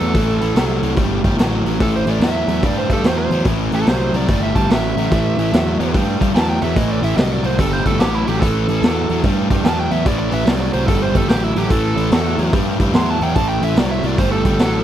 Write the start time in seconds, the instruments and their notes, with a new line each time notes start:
Already playing: lead electric guitar A4
0.00 picked electric bass E2, overdriven electric guitar A2 F#3, open hi-hat
0.14 picked electric bass A1, overdriven electric guitar A2 E3, kick, open hi-hat
0.41 picked electric bass A1, overdriven electric guitar A2 E3, open hi-hat
0.55 picked electric bass C2, overdriven electric guitar A2 F#3, snare, open hi-hat
0.82 picked electric bass C2, overdriven electric guitar A2 F#3, open hi-hat
0.96 picked electric bass G1, overdriven electric guitar A2 G3, kick, open hi-hat
1.24 picked electric bass G1, overdriven electric guitar A2 G3, kick, open hi-hat
1.37 picked electric bass A1, overdriven electric guitar A2 F#3, snare, open hi-hat
1.64 picked electric bass A1, overdriven electric guitar A2 F#3, open hi-hat
1.80 picked electric bass A1, overdriven electric guitar A2 E3, lead electric guitar A4, kick, open hi-hat
1.96 lead electric guitar C5
2.06 picked electric bass A1, overdriven electric guitar A2 E3, open hi-hat
2.11 lead electric guitar D5
2.19 picked electric bass E2, overdriven electric guitar A2 F#3, snare, open hi-hat
2.25 lead electric guitar E5
2.47 picked electric bass E2, overdriven electric guitar A2 F#3, open hi-hat
2.62 picked electric bass G2, overdriven electric guitar A2 G3, kick, open hi-hat
2.66 lead electric guitar D5
2.78 lead electric guitar C5
2.89 picked electric bass G2, overdriven electric guitar A2 G3, lead electric guitar A4, kick, open hi-hat
3.03 picked electric bass E2, overdriven electric guitar A2 F#3, lead electric guitar C5, snare, open hi-hat
3.18 lead electric guitar C5
3.29 picked electric bass E2, overdriven electric guitar A2 F#3, open hi-hat
3.45 picked electric bass A1, overdriven electric guitar A2 E3, kick, open hi-hat
3.71 picked electric bass A1, overdriven electric guitar A2 E3, lead electric guitar A4, open hi-hat
3.87 picked electric bass C2, overdriven electric guitar A2 F#3, lead electric guitar C5, snare, open hi-hat
4.13 picked electric bass C2, overdriven electric guitar A2 F#3, lead electric guitar D5, open hi-hat
4.28 picked electric bass G1, overdriven electric guitar A2 G3, kick, open hi-hat
4.43 lead electric guitar E5
4.54 picked electric bass G1, overdriven electric guitar A2 G3, lead electric guitar A5, kick, open hi-hat
4.69 picked electric bass A1, overdriven electric guitar A2 F#3, lead electric guitar E5, snare, open hi-hat
4.96 picked electric bass A1, overdriven electric guitar A2 F#3, open hi-hat
5.11 picked electric bass A1, overdriven electric guitar A2 E3, kick, open hi-hat
5.37 picked electric bass A1, overdriven electric guitar A2 E3, open hi-hat
5.52 picked electric bass E2, overdriven electric guitar A2 F#3, snare, open hi-hat
5.79 picked electric bass E2, overdriven electric guitar A2 F#3, open hi-hat
5.93 picked electric bass G2, overdriven electric guitar A2 G3, kick, open hi-hat
6.20 picked electric bass G2, overdriven electric guitar A2 G3, kick, open hi-hat
6.34 picked electric bass E2, overdriven electric guitar A2 F#3, lead electric guitar A5, snare, open hi-hat
6.49 lead electric guitar G5
6.61 picked electric bass E2, overdriven electric guitar A2 F#3, lead electric guitar E5, open hi-hat
6.76 picked electric bass A1, overdriven electric guitar A2 E3, lead electric guitar D#5, kick, open hi-hat
6.91 lead electric guitar D5
7.03 picked electric bass A1, overdriven electric guitar A2 E3, lead electric guitar E5, open hi-hat
7.16 picked electric bass C2, overdriven electric guitar A2 F#3, lead electric guitar D#5, snare, open hi-hat
7.33 lead electric guitar D5
7.43 picked electric bass C2, overdriven electric guitar A2 F#3, lead electric guitar C5, open hi-hat
7.58 picked electric bass G1, overdriven electric guitar A2 G3, lead electric guitar A4, kick, open hi-hat
7.73 lead electric guitar C5
7.85 picked electric bass G1, overdriven electric guitar A2 G3, lead electric guitar A4, kick, open hi-hat
7.99 picked electric bass A1, overdriven electric guitar A2 F#3, lead electric guitar G4, snare, open hi-hat
8.15 lead electric guitar E4
8.27 picked electric bass A1, overdriven electric guitar A2 F#3, lead electric guitar G4, open hi-hat
8.40 picked electric bass A1, overdriven electric guitar A2 E3, lead electric guitar A4, kick, open hi-hat
8.68 picked electric bass A1, overdriven electric guitar A2 E3, open hi-hat
8.82 picked electric bass E2, overdriven electric guitar A2 F#3, snare, open hi-hat
9.09 picked electric bass E2, overdriven electric guitar A2 F#3, open hi-hat
9.23 picked electric bass G2, overdriven electric guitar A2 G3, kick, open hi-hat
9.50 picked electric bass G2, overdriven electric guitar A2 G3, kick, open hi-hat
9.64 picked electric bass E2, overdriven electric guitar A2 F#3, lead electric guitar A5, snare, open hi-hat
9.80 lead electric guitar G5
9.91 picked electric bass E2, overdriven electric guitar A2 F#3, lead electric guitar E5, open hi-hat
10.05 picked electric bass A1, overdriven electric guitar A2 E3, lead electric guitar D5, kick, open hi-hat
10.19 lead electric guitar D5
10.31 picked electric bass A1, overdriven electric guitar A2 E3, lead electric guitar E5, open hi-hat
10.45 picked electric bass C2, overdriven electric guitar A2 F#3, lead electric guitar D5, snare, open hi-hat
10.60 lead electric guitar D5
10.73 picked electric bass C2, overdriven electric guitar A2 F#3, lead electric guitar C5, open hi-hat
10.86 picked electric bass G1, overdriven electric guitar A2 G3, lead electric guitar A4, kick, open hi-hat
11.02 lead electric guitar C5
11.14 picked electric bass G1, overdriven electric guitar A2 G3, lead electric guitar A4, kick, open hi-hat
11.28 picked electric bass A1, overdriven electric guitar A2 F#3, lead electric guitar G4, snare, open hi-hat
11.44 lead electric guitar E4
11.56 picked electric bass A1, overdriven electric guitar A2 F#3, lead electric guitar G4, open hi-hat
11.70 picked electric bass A1, overdriven electric guitar A2 E3, lead electric guitar A4, kick, open hi-hat
11.96 picked electric bass A1, overdriven electric guitar A2 E3, open hi-hat
12.11 picked electric bass E2, overdriven electric guitar A2 F#3, snare, open hi-hat
12.38 picked electric bass E2, overdriven electric guitar A2 F#3, open hi-hat
12.53 picked electric bass G2, overdriven electric guitar A2 G3, kick, open hi-hat
12.79 picked electric bass G2, overdriven electric guitar A2 G3, kick, open hi-hat
12.93 picked electric bass E2, overdriven electric guitar A2 F#3, lead electric guitar C6, snare, open hi-hat
13.10 lead electric guitar A5
13.20 picked electric bass E2, overdriven electric guitar A2 F#3, lead electric guitar G5, open hi-hat
13.36 picked electric bass A1, overdriven electric guitar A2 E3, lead electric guitar A5, kick, open hi-hat
13.49 lead electric guitar G5
13.62 picked electric bass A1, overdriven electric guitar A2 E3, lead electric guitar E5, open hi-hat
13.76 picked electric bass C2, overdriven electric guitar A2 F#3, lead electric guitar D5, snare, open hi-hat
13.91 lead electric guitar E5
14.03 picked electric bass C2, overdriven electric guitar A2 F#3, lead electric guitar D5, open hi-hat
14.18 picked electric bass G1, overdriven electric guitar A2 G3, lead electric guitar C5, kick, open hi-hat
14.32 lead electric guitar A4
14.44 picked electric bass G1, overdriven electric guitar A2 G3, kick, open hi-hat
14.59 picked electric bass A1, overdriven electric guitar A2 F#3, snare, open hi-hat